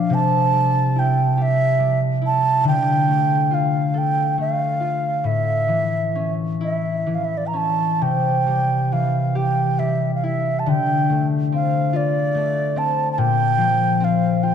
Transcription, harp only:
Already playing: A#2 F3 D4 F4
0.10 C3
0.53 G3
0.96 E4
1.37 G4
1.79 G3
2.22 E4
2.64 D3
3.08 A3
3.51 F4
3.94 A4
4.38 A3
4.80 F4
5.24 A2
5.68 E3
6.15 C#4
6.61 E4
7.06 E3
7.53 C#4
8.01 C3
8.47 G3
8.92 E3
9.35 G4
9.79 G3
10.23 E4
10.66 D3
11.10 A3
11.52 C4
11.93 F4
12.35 A3
12.76 C4
13.18 A#2
13.58 F3
14.00 C4
14.43 F4

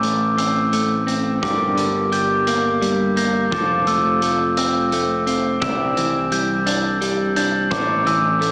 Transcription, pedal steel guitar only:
Already playing: A3 A4 C5 E5
1.43 G3 G4 A#4 D5
3.51 F3 F4 A4 C5
5.61 C4 G4 D5 E5
7.71 A3 A4 C5

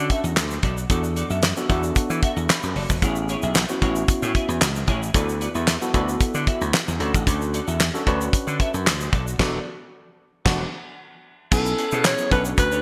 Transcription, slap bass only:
0.24 E2
0.36 D2
0.63 B1
0.90 E2
1.30 F#2
1.70 E2
2.10 E3
2.36 E2
2.63 F#2
2.76 F#1
2.90 E1
3.02 A1
3.43 B1
3.82 A1
4.22 A2
4.49 E2
4.61 C#2
4.88 A1
5.15 D2
5.55 E2
5.94 D2
6.20 muted slap bass stroke
6.34 D3
6.61 D2
6.88 E2
7.00 D2
7.14 A1
7.27 D2
7.68 E2
8.07 D2
8.47 D3
8.74 F#2
8.86 D2
9.13 B1
9.39 E1
10.46 E1
11.52 B1
11.92 B2
12.32 B1
12.58 D2

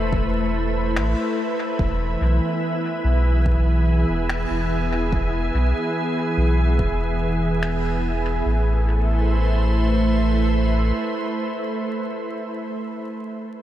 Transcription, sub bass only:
Already playing: E1
0.96 A1
1.79 E1
2.21 B1
3.04 B1
4.09 E1
4.50 E1
5.54 B1
6.37 B1
6.79 E1
8.46 A1

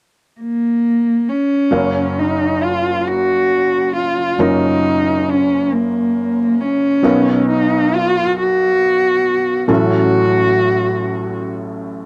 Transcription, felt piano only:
1.71 F#1 F#2 F#3 C#4 A#4 F5
4.39 F#1 F#2 F#3 C#4 F4 A#4
7.03 B1 B2 F#3 B3 D#4 A#4
9.68 A1 A2 F#3 C#4 E4 A4

